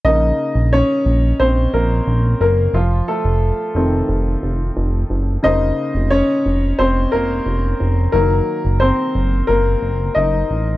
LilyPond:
<<
  \new Staff \with { instrumentName = "Upright piano" } { \time 4/4 \key bes \minor \tempo 4 = 89 <ees' ees''>4 <des' des''>4 <c' c''>8 <bes bes'>4 <bes bes'>8 | <f f'>8 <a a'>2 r4. | <ees' ees''>4 <des' des''>4 <c' c''>8 <bes bes'>4. | <bes bes'>4 <c' c''>4 <bes bes'>4 <ees' ees''>8. r16 | }
  \new Staff \with { instrumentName = "Upright piano" } { \clef bass \time 4/4 \key bes \minor <des bes>1 | r4. <ees a c'>2~ <ees a c'>8 | <des bes c''>4. r2 r8 | <ees ges>1 | }
  \new Staff \with { instrumentName = "Analog synth bass" } { \clef bass \time 4/4 \key bes \minor bes,,8 r16 bes,,8 r16 bes,,8 bes,,8 bes,,8 bes,,8 ges,,8 | f,,8 r16 f,,8 r16 f,,8 f,,8 f,,8 f,,8 ges,,8 | f,,8 r16 f,,8 r16 f,,8 f,,8 f,,8 f,,8 f,,8 | ges,,8 r16 ges,,8 r16 ges,,8 ges,,8 ges,,8 ges,,8 a,,8 | }
>>